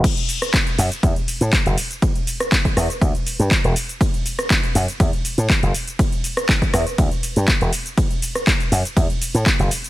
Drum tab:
CC |x---------------|----------------|----------------|----------------|
RD |x---x---x---x---|x---x---x---x---|x---x---x---x---|x---x---x---x---|
HH |xxoxxxoxxxoxxxox|xxoxxxoxxxoxxxox|xxoxxxoxxxoxxxox|xxoxxxoxxxoxxxox|
SH |xxxxxxxxxxxxxxxx|xxxxxxxxxxxxxxxx|xxxxxxxxxxxxxxxx|xxxxxxxxxxxxxxxx|
CP |----x-------x---|----x-------x---|----x-------x---|----x-------x---|
SD |---r------------|---r--r---------|---r------------|---r--r---------|
BD |o---o---o---o---|o---oo--o---o---|o---o---o---o---|o---oo--o---o---|

CC |----------------|
RD |x---x---x---x---|
HH |xxoxxxoxxxoxxxox|
SH |xxxxxxxxxxxxxxxx|
CP |----x-------x---|
SD |---r------------|
BD |o---o---o---o---|